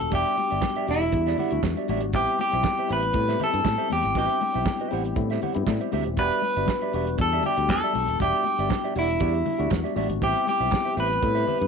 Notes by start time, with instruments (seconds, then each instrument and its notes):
Already playing: tine electric piano G3 B3 D4 F#4, clean electric guitar A4
0.00 fingered electric bass D#1, muted clean electric guitar stroke
0.11 fingered electric bass E1, tine electric piano G3 B3 D4 G4, clean electric guitar G4 D5 E5, kick, closed hi-hat, muted conga
0.15 clean electric guitar G4
0.26 closed hi-hat
0.37 muted clean electric guitar stroke, open hi-hat, muted conga
0.49 fingered electric bass G1, tine electric piano G3 B3 D4 G4, clean electric guitar G4 D5 E5, closed hi-hat
0.62 muted clean electric guitar stroke, kick, snare, clap, high conga
0.76 clean electric guitar G4 D5 E5, closed hi-hat
0.87 fingered electric bass E1, tine electric piano G3 B3 D4 F#4, clean electric guitar E4 G4 D5 F#5, open hi-hat
1.01 closed hi-hat
1.12 fingered electric bass E2, tine electric piano G3 B3 D4 E4, muted clean electric guitar stroke, kick, closed hi-hat
1.26 clean electric guitar G4 D5 E5, snare, closed hi-hat
1.38 clean electric guitar G4 D5 F#5, open hi-hat, muted conga, low conga
1.50 fingered electric bass D2, tine electric piano G3 B3 D4 F#4, muted clean electric guitar stroke, closed hi-hat
1.63 fingered electric bass E2, muted clean electric guitar stroke, kick, snare, clap, high conga
1.77 clean electric guitar G4 D5 E5, closed hi-hat
1.88 fingered electric bass A1, tine electric piano G3 B3 D4 F#4, clean electric guitar G4 D5 E5, open hi-hat, high conga
2.01 fingered electric bass G#1, muted clean electric guitar stroke, closed hi-hat
2.13 fingered electric bass A1, tine electric piano G3 B3 C4 E4, clean electric guitar G4 C5 E5, kick, closed hi-hat, muted conga
2.27 closed hi-hat
2.39 clean electric guitar G4, muted clean electric guitar stroke, open hi-hat, muted conga
2.51 fingered electric bass B1, tine electric piano G3 B3 C4 E4, clean electric guitar G4 C5 E5, closed hi-hat
2.63 kick, snare, clap, high conga
2.78 clean electric guitar G4 C5 E5, closed hi-hat
2.88 fingered electric bass A1, tine electric piano G3 B3 C4 E4, clean electric guitar G4 C5 E5, open hi-hat
2.93 clean electric guitar B4
3.03 muted clean electric guitar stroke, closed hi-hat
3.13 fingered electric bass A2, tine electric piano G3 B3 C4 G4, muted clean electric guitar stroke, kick, closed hi-hat, muted conga
3.28 clean electric guitar G4 C5 E5, snare, closed hi-hat
3.39 clean electric guitar G4 C5 E5, open hi-hat, muted conga, low conga
3.44 clean electric guitar A4
3.52 fingered electric bass G2, tine electric piano G3 B3 C4 E4, muted clean electric guitar stroke, closed hi-hat
3.65 fingered electric bass A2, kick, snare, clap, high conga
3.78 clean electric guitar G4 C5 E5, closed hi-hat
3.89 fingered electric bass E2, tine electric piano G3 B3 C4 E4, clean electric guitar G4, muted clean electric guitar stroke, open hi-hat, high conga
4.03 fingered electric bass G#1, muted clean electric guitar stroke, closed hi-hat
4.13 fingered electric bass A1, tine electric piano G3 B3 C4 D4, clean electric guitar G4 C5 E5, kick, closed hi-hat, muted conga
4.19 clean electric guitar G4
4.29 closed hi-hat
4.41 muted clean electric guitar stroke, open hi-hat, muted conga
4.53 fingered electric bass B1, tine electric piano G3 B3 C4 E4, clean electric guitar G4 C5 E5, closed hi-hat
4.66 muted clean electric guitar stroke, kick, snare, clap, high conga
4.80 clean electric guitar G4 C5 E5, closed hi-hat
4.90 fingered electric bass A1, tine electric piano G3 B3 C4 E4 G5, clean electric guitar G4 C5 F#5, open hi-hat
5.05 muted clean electric guitar stroke, closed hi-hat
5.16 fingered electric bass A2, tine electric piano G3 B3 C4 E4 E5, muted clean electric guitar stroke, kick, closed hi-hat, low conga
5.30 clean electric guitar G4 C5 E5, snare, closed hi-hat
5.42 clean electric guitar G4 C5 F#5, open hi-hat, muted conga, low conga
5.54 fingered electric bass G2, tine electric piano G3 B3 C4 E4, muted clean electric guitar stroke, closed hi-hat
5.67 fingered electric bass A2, tine electric piano D5 E5, muted clean electric guitar stroke, kick, snare, clap, high conga
5.81 clean electric guitar G4 C5 E5, closed hi-hat
5.92 fingered electric bass D2, clean electric guitar G4 C5 E5, tine electric piano C5, open hi-hat, high conga
6.05 fingered electric bass D#1, muted clean electric guitar stroke, closed hi-hat
6.17 fingered electric bass E1, tine electric piano G3 B3 D4 F#4, clean electric guitar G4 B4 D5 E5, kick, closed hi-hat, muted conga
6.31 closed hi-hat
6.42 muted clean electric guitar stroke, open hi-hat, muted conga
6.55 fingered electric bass G1, tine electric piano G3 B3 D4 F#4, clean electric guitar G4 D5 E5, closed hi-hat
6.66 muted clean electric guitar stroke, kick, snare, clap, high conga
6.82 clean electric guitar G4 D5 E5, closed hi-hat
6.93 fingered electric bass E1, tine electric piano G3 B3 D4 F#4, clean electric guitar G4 D5 E5, open hi-hat
7.07 muted clean electric guitar stroke, closed hi-hat
7.18 fingered electric bass E2, tine electric piano G3 B3 D4 F#4, clean electric guitar A4, muted clean electric guitar stroke, kick, closed hi-hat, muted conga
7.32 clean electric guitar G4 D5 E5, closed hi-hat
7.43 clean electric guitar G4 D5 E5, open hi-hat, muted conga, low conga
7.57 fingered electric bass D2, tine electric piano G3 B3 D4 F#4, muted clean electric guitar stroke, closed hi-hat
7.68 fingered electric bass E2, clean electric guitar A4, muted clean electric guitar stroke, kick, snare, clap, high conga
7.84 clean electric guitar G4 D5 E5, closed hi-hat
7.93 fingered electric bass B1, tine electric piano G3 B3 D4 F#4, muted clean electric guitar stroke, open hi-hat, high conga
8.08 fingered electric bass D#1, muted clean electric guitar stroke, closed hi-hat
8.19 fingered electric bass E1, tine electric piano G3 B3 D4 G4, clean electric guitar G4 D5 E5, kick, closed hi-hat, muted conga
8.35 closed hi-hat
8.44 muted clean electric guitar stroke, open hi-hat, muted conga
8.59 fingered electric bass G1, tine electric piano G3 B3 D4 G4, clean electric guitar G4 D5 E5, closed hi-hat
8.69 kick, snare, clap, high conga
8.84 clean electric guitar G4 D5 E5, closed hi-hat
8.95 fingered electric bass E1, tine electric piano G3 B3 D4 F#4, clean electric guitar E4 G4 D5 F#5, open hi-hat
9.09 muted clean electric guitar stroke, closed hi-hat
9.20 fingered electric bass E2, tine electric piano G3 B3 D4 F#4, clean electric guitar G4 D5 E5, kick, closed hi-hat
9.34 muted clean electric guitar stroke, closed hi-hat
9.46 muted clean electric guitar stroke, open hi-hat, muted conga, low conga
9.58 fingered electric bass D2, tine electric piano G3 B3 D4 F#4, clean electric guitar G4 D5 E5, closed hi-hat
9.71 fingered electric bass E2, kick, snare, clap, high conga
9.84 clean electric guitar G4 D5 E5, closed hi-hat
9.95 fingered electric bass A1, tine electric piano G3 B3 D4 F#4, clean electric guitar G4 D5 E5, open hi-hat, high conga
10.09 fingered electric bass G#1, muted clean electric guitar stroke, closed hi-hat
10.22 fingered electric bass A1, tine electric piano G3 B3 C4 E4, clean electric guitar G4 C5 E5, kick, closed hi-hat, muted conga
10.36 closed hi-hat
10.47 clean electric guitar G4, muted clean electric guitar stroke, open hi-hat, muted conga
10.60 fingered electric bass B1, tine electric piano G3 B3 C4 E4, clean electric guitar G4 C5 E5, closed hi-hat
10.71 kick, snare, clap, high conga
10.85 clean electric guitar G4 C5 E5, closed hi-hat
10.97 fingered electric bass A1, tine electric piano G3 B3 C4 E4, clean electric guitar G4 B4 C5 E5, open hi-hat
11.11 muted clean electric guitar stroke, closed hi-hat
11.22 fingered electric bass A2, tine electric piano G3 B3 C4 E4, muted clean electric guitar stroke, kick, closed hi-hat, muted conga
11.35 clean electric guitar G4 C5 E5, closed hi-hat
11.47 clean electric guitar G4 C5 E5, open hi-hat, muted conga, low conga
11.60 fingered electric bass G2, tine electric piano G3 B3 C4 E4, muted clean electric guitar stroke, closed hi-hat